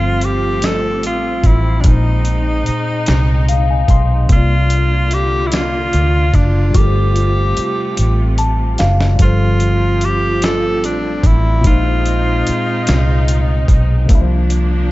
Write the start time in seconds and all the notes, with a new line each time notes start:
Already playing: G1 F3 G3 A3 C4 F4 A4 C5
0.21 G4, closed hi-hat
0.62 A4, snare, closed hi-hat
1.03 A1 F4, closed hi-hat
1.44 A1 E4, kick, closed hi-hat
1.81 A#2 G#3 D4 D#4, kick, closed hi-hat
1.86 A#1 D#4
1.91 C5
2.25 closed hi-hat
2.66 muted fingered electric bass stroke, closed hi-hat
3.06 C2, snare, closed hi-hat
3.48 F5, closed hi-hat
3.71 G#5
3.88 B1 C6, kick, closed hi-hat
4.26 C3 D3 A#3 F4, kick, closed hi-hat
4.30 C2 F4
4.36 D5
4.70 closed hi-hat
5.11 G4, closed hi-hat
5.47 E4
5.52 F4, snare, closed hi-hat
5.93 D2, closed hi-hat
6.34 F#1 D4, kick, closed hi-hat
6.70 C3 G3 A3 F4
6.74 G1 G4 A4, kick, closed hi-hat
6.80 A#4
7.16 closed hi-hat
7.57 muted fingered electric bass stroke, closed hi-hat
7.97 A1, closed hi-hat
8.38 A5, closed hi-hat
8.78 F#1 F5, snare, closed hi-hat
9.01 snare
9.15 F3 G3 C4, closed hi-hat
9.19 G1 F3 A3 F4 A4, kick
9.24 C5
9.60 closed hi-hat
10.01 G4, closed hi-hat
10.42 A4, snare, closed hi-hat
10.84 A1 D4, closed hi-hat
11.23 A1 E4, kick, closed hi-hat
11.61 A#2 G#3 D#4, kick, closed hi-hat
11.65 A#1 G#3 D#4 F4
11.70 C5
12.06 closed hi-hat
12.47 muted fingered electric bass stroke, closed hi-hat
12.87 C2, snare, closed hi-hat
13.28 closed hi-hat
13.68 B1, kick, closed hi-hat
14.05 C3 F3 A#3 D4, kick, closed hi-hat
14.10 C2 D4
14.15 E4
14.21 F3
14.50 closed hi-hat